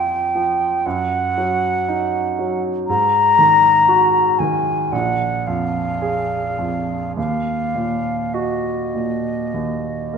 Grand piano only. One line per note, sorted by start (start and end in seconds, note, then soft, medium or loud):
0.00 0.81 F2 soft
0.00 0.14 F3 soft
0.00 0.65 F4 soft
0.35 0.85 F3 soft
0.86 2.84 F#2 soft
1.38 2.18 F#3 soft
1.88 2.69 D#4 soft
2.39 2.88 F#3 soft
2.89 4.90 G#2 soft
3.39 4.19 D#3 soft
3.88 4.72 F#4 soft
4.40 4.93 D#3 soft
4.92 7.12 A#1 soft
5.47 6.36 F2 soft
6.02 6.93 G#4 soft
6.58 7.16 F2 soft
7.17 9.50 D#2 soft
7.75 8.70 A#2 soft
8.34 9.30 F#4 soft
8.95 9.90 A#2 soft
9.54 10.18 D#2 soft
10.13 10.18 A#3 soft